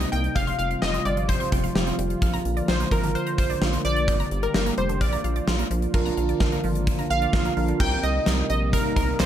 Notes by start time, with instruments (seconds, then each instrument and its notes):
Already playing: analog synth pad C3 G3 A#3 D#4, analog polysynth D#5
0.01 synth arpeggio sound C4, closed hi-hat
0.12 analog synth bass C2, synth arpeggio sound A#3, analog polysynth G5, closed hi-hat
0.24 closed hi-hat
0.35 analog synth bass F1, analog synth pad F3 F4, analog polysynth F5, synth arpeggio sound G6, kick, closed hi-hat
0.47 synth arpeggio sound C6, closed hi-hat
0.59 analog synth bass F1, analog polysynth F5, closed hi-hat
0.71 synth arpeggio sound F5, closed hi-hat
0.82 analog synth bass F1, synth arpeggio sound G4, analog polysynth D#5, snare
0.94 synth arpeggio sound C4, closed hi-hat
1.05 analog synth bass G1, synth arpeggio sound G3, analog polysynth D5, closed hi-hat
1.17 synth arpeggio sound F3, closed hi-hat
1.28 analog polysynth C5, synth arpeggio sound G6, kick, closed hi-hat
1.40 synth arpeggio sound C6, closed hi-hat
1.52 analog synth bass F1, synth arpeggio sound G5, kick, closed hi-hat
1.64 synth arpeggio sound F5, closed hi-hat
1.75 analog synth bass F1, synth arpeggio sound G4, snare
1.87 synth arpeggio sound C4, closed hi-hat
1.98 analog synth bass F1, synth arpeggio sound G3, closed hi-hat
2.10 closed hi-hat
2.22 analog synth bass A#1, analog synth pad D3 A#3, synth arpeggio sound F6, kick, closed hi-hat
2.34 synth arpeggio sound A#5, closed hi-hat
2.45 analog synth bass A#1, closed hi-hat
2.57 synth arpeggio sound D5, closed hi-hat
2.68 analog synth bass A#1, synth arpeggio sound F4, analog polysynth C5, snare
2.80 synth arpeggio sound A#3, closed hi-hat
2.91 analog synth bass G#1, synth arpeggio sound F3, analog polysynth A#4, kick, closed hi-hat
3.03 synth arpeggio sound D3, closed hi-hat
3.15 analog polysynth C5, synth arpeggio sound F6, closed hi-hat
3.27 synth arpeggio sound A#5, closed hi-hat
3.38 analog synth bass A#1, analog polysynth C5, synth arpeggio sound F5, kick, closed hi-hat
3.50 synth arpeggio sound D5, closed hi-hat
3.61 analog synth bass A#1, synth arpeggio sound F4, snare
3.73 synth arpeggio sound A#3, closed hi-hat
3.85 analog synth bass A#1, synth arpeggio sound F3, analog polysynth D5, closed hi-hat
3.96 closed hi-hat
4.08 analog synth bass G1, analog synth pad G3 G4, synth arpeggio sound G6, kick, closed hi-hat
4.20 synth arpeggio sound A#5, closed hi-hat
4.31 analog synth bass G1, closed hi-hat
4.43 analog polysynth A#4, synth arpeggio sound D5, closed hi-hat
4.54 analog synth bass G1, synth arpeggio sound G4, snare
4.66 synth arpeggio sound A#3, closed hi-hat
4.78 analog synth bass F1, synth arpeggio sound G3, analog polysynth C5, closed hi-hat
4.89 synth arpeggio sound D3, closed hi-hat
5.01 analog synth bass A#1, analog synth pad F3 F4, analog polysynth D5, synth arpeggio sound F6, kick, closed hi-hat
5.12 synth arpeggio sound A#5, closed hi-hat
5.24 analog synth bass A#1, synth arpeggio sound F5, closed hi-hat
5.36 synth arpeggio sound D5, closed hi-hat
5.47 analog synth bass A#1, synth arpeggio sound F4, snare
5.59 synth arpeggio sound A#3, closed hi-hat
5.71 analog synth bass A#1, synth arpeggio sound F3, closed hi-hat
5.82 closed hi-hat
5.94 analog synth bass A#1, analog synth pad D3 F3 A#3 F4, synth keys D4 F4 A#4, synth arpeggio sound F6, kick, crash
6.06 synth arpeggio sound A#5, closed hi-hat
6.17 analog synth bass A#1, synth arpeggio sound F5, closed hi-hat
6.29 synth arpeggio sound D5, closed hi-hat
6.40 analog synth bass A#1, synth arpeggio sound F4, kick, snare
6.52 synth arpeggio sound A#3, closed hi-hat
6.64 analog synth bass G#1, synth arpeggio sound F3, open hi-hat
6.75 closed hi-hat
6.87 kick, closed hi-hat
6.99 synth arpeggio sound A#5, closed hi-hat
7.10 analog synth bass A#1, synth arpeggio sound F5, analog polysynth F5, closed hi-hat
7.22 synth arpeggio sound D5, closed hi-hat
7.33 analog synth bass A#1, synth arpeggio sound F4, kick, snare
7.45 synth arpeggio sound A#3, closed hi-hat
7.57 analog synth bass A#1, synth arpeggio sound F3, synth keys D4 F4 A#4, open hi-hat
7.68 synth arpeggio sound D3, closed hi-hat
7.80 analog synth bass C2, analog synth pad C3 G3 A#3 D#4, synth keys C4 D#4 G4 A#4, analog polysynth G5, kick, crash
8.03 analog synth bass C2, analog polysynth D#5, closed hi-hat
8.26 analog synth bass C2, snare, closed hi-hat
8.50 analog synth bass A#1, analog polysynth D#5, closed hi-hat
8.73 analog polysynth A#4, kick, closed hi-hat
8.96 analog synth bass C2, analog polysynth A#4, kick, closed hi-hat
9.19 analog synth bass C2, analog polysynth C5, snare, clap, closed hi-hat